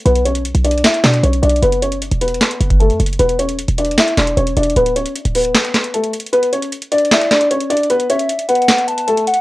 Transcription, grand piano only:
\new Staff \with { instrumentName = "Grand piano" } { \time 4/4 \key fis \phrygian \tempo 4 = 153 <b b'>8 <cis' cis''>8 r8 <d' d''>8 <e' e''>8 <d' d''>8 <cis' cis''>8 <d' d''>8 | <b b'>8 <cis' cis''>8 r8 <b b'>4. <a a'>8 r8 | <b b'>8 <cis' cis''>8 r8 <d' d''>8 <e' e''>8 <d' d''>8 <cis' cis''>8 <d' d''>8 | <b b'>8 <cis' cis''>8 r8 <b b'>4. <a a'>8 r8 |
<b b'>8 <cis' cis''>8 r8 <d' d''>8 <e' e''>8 <d' d''>8 <cis' cis''>8 <d' d''>8 | <b b'>8 <cis' cis''>8 r8 <b b'>4. <a a'>8 r8 | }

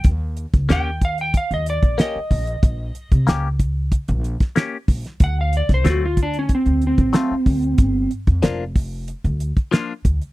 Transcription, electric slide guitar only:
\new Staff \with { instrumentName = "Electric slide guitar" } { \time 4/4 \key ees \lydian \tempo 4 = 93 r4 g''8 f''16 g''16 f''16 ees''16 d''8 ees''4~ | ees''4 r2. | fis''16 eis''16 d''16 c''16 fis'16 eis'16 d'16 cis'16 c'8 c'4.~ | c'8 r2. r8 | }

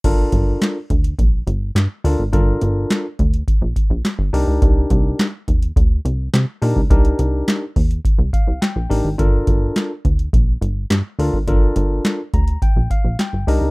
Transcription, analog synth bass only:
\new Staff \with { instrumentName = "Analog synth bass" } { \clef bass \time 4/4 \key g \minor \tempo 4 = 105 g,,8 g,,8 r8 d,8 bes,,8 g,,8 g,16 r16 d,16 aes,,16 | g,,8 g,,8 r8 d,8 r16 bes,,16 r16 bes,,16 r16 g,,16 c,16 cis,16 | c,8 c,8 r8 ees,8 d,8 c,8 c16 r16 bes,16 cis,16 | c,8 c,8 r8 ees,8 r16 c,16 r16 c,16 r16 bes,,16 a,,16 aes,,16 |
g,,8 g,,8 r8 d,8 bes,,8 g,,8 g,16 r16 d,16 aes,,16 | g,,8 g,,8 r8 d,8 r16 bes,,16 r16 bes,,16 r16 g,,16 c,16 cis,16 | }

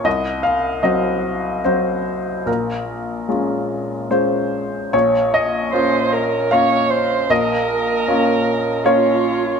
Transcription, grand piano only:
\new Staff \with { instrumentName = "Grand piano" } { \time 3/4 \key bes \minor \tempo 4 = 75 << { ees''8 f''8 ees''4 c''4 | bes'2 c''4 | des''8 ees''4. f''4 | ees''2 des''4 | } \\ { c,4 <ges c' ges'>4 <ges c' ges'>4 | bes,,4 <aes des' f'>4 <aes des' f'>4 | bes,,4 <bes des' f'>4 <bes des' f'>4 | bes,,4 <bes des' f'>4 <bes des' f'>4 | } >> }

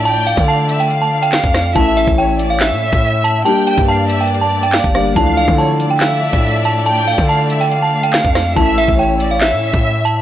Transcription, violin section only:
\new Staff \with { instrumentName = "Violin section" } { \time 4/4 \key d \minor \tempo 4 = 141 g''4 f''8 e''8 f''2 | e''4 cis''8 d''8 e''2 | g''4 f''8 e''8 d''4. d''8 | f''4 cis''8 d''8 e''2 |
g''4 f''8 e''8 f''2 | e''4 cis''8 d''8 e''2 | }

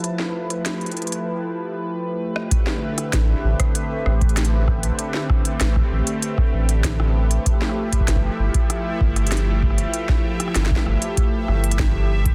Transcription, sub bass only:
\new Staff \with { instrumentName = "Sub bass" } { \clef bass \time 4/4 \key a \minor \tempo 4 = 97 r1 | r4 a,,16 r16 a,,16 r8. a,,4. | r4 a,,16 r16 a,,16 r8. a,,4. | r4 g,,16 r16 g,,16 r8. g,,4. |
r4 g,,16 r16 g,,16 r8. g,,8. g,,8. | }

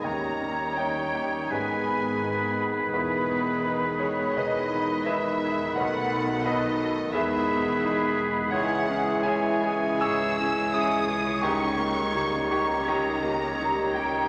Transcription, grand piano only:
\new Staff \with { instrumentName = "Grand piano" } { \time 4/4 \key dis \phrygian \tempo 4 = 84 << { <dis'' g'' ais''>4 <cis'' dis'' g''>4 <b' dis'' gis''>4. r8 | <e' gis' b'>4. cis''8 <gis' b' dis''>4 <gis' b' e''>4 | <b' dis'' fis''>4 <a' b' dis''>4 <gis' b' e''>4. r8 | <cis'' fis''>4 <cis'' e'' gis''>4 <gis'' cis''' e'''>4 dis'''4 |
<g'' ais'' cis'''>4. cis'''8 <dis'' g'' ais''>4. g''8 | } \\ { dis,8 cis'8 dis'8 g'8 gis,8 b8 dis'8 gis'8 | e,8 b8 dis'8 gis'8 b,8 b8 dis'8 gis'8 | b,,8 b8 dis'8 a'8 e,8 b8 dis'8 gis'8 | cis,8 cis'8 e'8 gis'8 gis,8 cis'8 e'8 gis'8 |
cis,8 ais8 dis'8 g'8 cis,8 ais8 dis'8 g'8 | } >> }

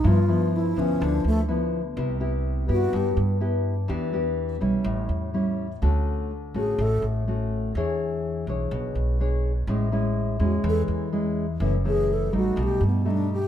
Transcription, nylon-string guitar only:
\new Staff \with { instrumentName = "Nylon-string guitar" } { \time 4/4 \key a \lydian \tempo 4 = 125 << { <f b e'>8 <f b e'>4 <f b e'>4. <f b e'>8 r8 | <b e' g'>8 <b e' g'>4 <b e' g'>4. <b e' g'>8 r8 | <b d' g'>8 <b d' g'>4 <g cis' e'>4. <g cis' e'>8 r8 | <a cis' fis'>4 r8 <a cis' fis'>4. <a cis' fis'>4 |
<d' gis' cis''>4. <d' gis' cis''>4. <d' gis' cis''>8 r8 | <gis cis' e'>8 <gis cis' e'>4 <gis cis' e'>4. <gis cis' e'>8 r8 | <e a cis'>8 <e a cis'>4 <g a dis'>4. <g a dis'>8 r8 | } \\ { g,2 d2 | c2 g,2 | e2 a,2 | d2 a,2 |
e2 b,2 | a,2 e2 | fis,2 b,2 | } >> }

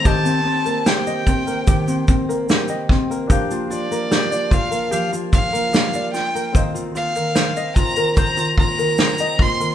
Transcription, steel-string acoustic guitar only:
\new Staff \with { instrumentName = "Steel-string acoustic guitar" } { \time 4/4 \key g \minor \tempo 4 = 74 ees16 bes16 c'16 bes16 c'16 g'16 c'16 bes16 ees16 bes16 c'16 bes16 c'16 g'16 c'16 bes16 | f16 bes16 d'16 bes16 d'16 f'16 d'16 bes16 f16 bes16 d'16 bes16 d'16 f'16 d'16 bes16 | ees16 ees16 bes16 ees16 bes16 c'16 bes16 ees16 ees16 ees16 bes16 ees16 bes16 c'16 bes16 ees16 | }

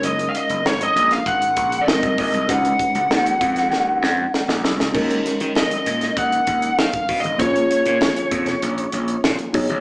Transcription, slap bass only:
\new Staff \with { instrumentName = "Slap bass" } { \clef bass \time 4/4 \key dis \minor \tempo 4 = 98 fis,,8 r16 fis,,16 gis,,8 ais,,8 gis,,8 ais,,8 gis,,16 bis,,16 ais,,16 bis,,16 | cis,8 r16 cis,16 dis,8 eis,8 dis,8 eis,8 r16 ais,,16 b,,16 cis,16 | dis,8 r16 dis16 r8 ais,8 dis,8 dis,8 dis16 r16 b,16 gis,,16 | ais,,8 r16 ais,16 r8 eis,8 ais,,8 ais,,8 ais,16 r16 b,,16 ais,,16 | }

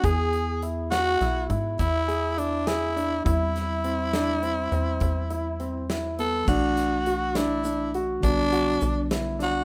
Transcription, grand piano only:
\new Staff \with { instrumentName = "Grand piano" } { \time 11/8 \key e \minor \tempo 4 = 102 gis'4 e'8 fis'8 e'8 e'4 gis'8 e'8 gis'8 d'8 | e'4 c'8 d'8 c'8 c'4 e'8 c'8 e'8 b8 | d'4 fis'8 d'8 d'8 fis'4 fis'8 d'8 e'8 d'8 | }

